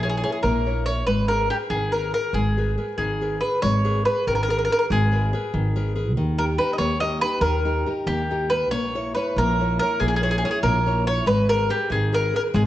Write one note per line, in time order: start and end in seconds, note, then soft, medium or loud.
0.00 0.21 A#1 medium
0.00 0.22 A#3 medium
0.00 0.23 E4 medium
0.00 0.08 G#4 medium
0.00 0.24 A#4 soft
0.05 0.23 C#5 medium
0.10 0.16 G#4 medium
0.17 0.22 G#4 medium
0.24 0.58 E4 soft
0.24 0.31 G#4 medium
0.24 0.59 A#4 soft
0.24 0.58 C#5 medium
0.32 0.39 G#4 medium
0.43 1.07 A#1 loud
0.43 0.86 A#3 medium
0.43 0.83 A#4 medium
0.66 0.86 E4 medium
0.66 0.87 A#4 soft
0.66 0.87 C#5 medium
0.86 1.03 E4 soft
0.86 1.04 A#4 soft
0.86 1.05 C#5 loud
0.86 1.04 C#5 soft
1.07 1.48 G#1 medium
1.07 1.49 G#3 medium
1.07 1.27 B4 loud
1.28 1.49 G#4 medium
1.28 1.48 A#4 loud
1.28 1.49 A#4 medium
1.28 1.49 B4 medium
1.50 1.56 G4 medium
1.50 1.84 G#4 soft
1.50 1.84 A#4 soft
1.50 1.84 B4 soft
1.70 2.11 G#1 medium
1.70 2.12 D#3 medium
1.70 1.91 G#4 medium
1.92 2.12 G#4 soft
1.92 2.11 A#4 medium
1.92 2.13 A#4 soft
1.92 2.13 B4 medium
2.14 2.47 G#4 soft
2.14 2.33 A#4 loud
2.14 2.48 A#4 soft
2.14 2.48 B4 soft
2.33 2.75 G#1 medium
2.33 2.76 G#3 medium
2.33 2.97 G#4 medium
2.58 2.76 G#4 soft
2.58 2.77 A#4 soft
2.58 2.77 B4 medium
2.78 3.12 G#4 medium
2.78 3.13 A#4 soft
2.78 3.13 B4 soft
2.98 3.40 G#1 medium
2.98 3.41 D#3 medium
2.98 3.38 G#4 medium
3.21 3.40 G#4 soft
3.21 3.40 A#4 soft
3.21 3.40 B4 medium
3.41 3.58 G#4 soft
3.41 3.58 A#4 soft
3.41 3.62 B4 medium
3.41 3.58 B4 soft
3.62 4.05 G#1 medium
3.62 4.04 G#3 medium
3.62 4.03 C#5 loud
3.85 4.04 G#4 medium
3.85 4.04 A#4 soft
3.85 4.05 B4 medium
4.05 4.40 G#4 soft
4.05 4.40 A#4 soft
4.05 4.25 B4 medium
4.05 4.41 B4 medium
4.27 4.68 G#1 medium
4.27 4.69 D#3 medium
4.27 4.34 A#4 medium
4.35 4.42 A#4 medium
4.43 4.49 A#4 medium
4.48 4.68 G#4 soft
4.48 4.69 A#4 soft
4.48 4.57 A#4 medium
4.48 4.69 B4 soft
4.58 4.63 A#4 medium
4.65 4.71 A#4 medium
4.70 5.04 G#4 soft
4.70 5.04 A#4 soft
4.70 4.78 A#4 loud
4.70 5.04 B4 soft
4.79 4.85 A#4 medium
4.90 5.31 G#1 loud
4.90 5.32 G#3 medium
4.90 5.93 G#4 medium
5.11 5.32 G#4 medium
5.11 5.33 A#4 medium
5.11 5.33 B4 medium
5.33 5.67 G#4 medium
5.33 5.67 A#4 soft
5.33 5.68 B4 medium
5.54 6.16 G#1 medium
5.54 5.95 D#3 medium
5.76 5.94 G#4 medium
5.76 5.94 A#4 medium
5.76 5.95 B4 medium
5.95 6.12 G#4 soft
5.95 6.12 A#4 soft
5.95 6.13 B4 medium
6.16 6.57 D#2 medium
6.16 6.58 D#3 medium
6.38 6.58 D#4 medium
6.38 6.59 G4 soft
6.38 6.44 A#4 medium
6.38 6.59 A#4 medium
6.58 6.93 D#4 medium
6.58 6.93 G4 medium
6.58 6.93 A#4 medium
6.58 6.73 B4 medium
6.73 6.78 D#5 medium
6.78 7.20 D#2 medium
6.78 7.21 A#3 medium
6.78 6.99 C#5 medium
7.00 7.21 D#4 medium
7.00 7.21 G4 soft
7.00 7.21 A#4 medium
7.00 7.20 D#5 loud
7.21 7.57 D#4 soft
7.21 7.57 G4 soft
7.21 7.57 A#4 medium
7.21 7.41 B4 loud
7.41 7.83 D#2 loud
7.41 7.85 D#3 medium
7.41 7.87 A#4 loud
7.65 7.85 D#4 medium
7.65 7.85 G4 soft
7.65 7.86 A#4 medium
7.86 8.21 D#4 medium
7.86 8.21 G4 soft
7.86 8.22 A#4 medium
8.06 8.71 D#2 medium
8.06 8.50 A#3 medium
8.06 8.52 G4 medium
8.31 8.49 D#4 medium
8.31 8.50 G4 medium
8.31 8.50 A#4 medium
8.50 8.67 D#4 soft
8.50 8.68 G4 soft
8.50 8.68 A#4 medium
8.50 8.70 B4 loud
8.71 9.13 A#1 medium
8.71 9.14 A#3 medium
8.71 9.12 C#5 loud
8.95 9.14 E4 soft
8.95 9.15 A#4 soft
8.95 9.15 C#5 medium
9.15 9.51 E4 soft
9.15 9.51 A#4 soft
9.15 9.37 B4 medium
9.15 9.51 C#5 medium
9.36 9.78 A#1 medium
9.36 9.80 A#3 medium
9.36 9.78 A#4 loud
9.60 9.81 E4 soft
9.60 9.80 A#4 soft
9.60 9.81 C#5 medium
9.79 10.15 E4 soft
9.79 9.99 A#4 loud
9.79 10.15 A#4 soft
9.79 10.16 C#5 medium
10.00 10.42 A#1 medium
10.00 10.42 A#3 medium
10.00 10.07 G#4 medium
10.08 10.15 G#4 medium
10.16 10.22 G#4 medium
10.22 10.42 E4 soft
10.22 10.30 G#4 medium
10.22 10.42 A#4 soft
10.22 10.44 C#5 medium
10.31 10.37 G#4 medium
10.38 10.44 G#4 medium
10.43 10.78 E4 soft
10.43 10.50 G#4 medium
10.43 10.78 A#4 medium
10.43 10.78 C#5 medium
10.51 10.59 G#4 medium
10.63 11.27 A#1 loud
10.63 11.05 A#3 medium
10.63 11.03 A#4 medium
10.86 11.06 E4 medium
10.86 11.06 A#4 medium
10.86 11.06 C#5 medium
11.07 11.24 E4 soft
11.07 11.23 A#4 soft
11.07 11.26 C#5 loud
11.07 11.23 C#5 medium
11.26 11.68 G#1 loud
11.26 11.68 G#3 medium
11.26 11.49 B4 loud
11.49 11.68 G#4 medium
11.49 11.68 A#4 medium
11.49 11.68 A#4 loud
11.49 11.69 B4 medium
11.69 11.89 G4 loud
11.69 12.04 G#4 medium
11.69 12.04 A#4 medium
11.69 12.04 B4 medium
11.90 12.32 G#1 medium
11.90 12.32 D#3 medium
11.90 12.14 G#4 medium
12.13 12.32 G#4 medium
12.13 12.32 A#4 medium
12.13 12.33 A#4 medium
12.13 12.32 B4 medium
12.33 12.66 G#4 soft
12.33 12.66 A#4 soft
12.33 12.41 A#4 loud
12.33 12.66 B4 soft
12.54 12.66 G#1 loud
12.54 12.66 G#3 medium
12.54 12.62 G#4 medium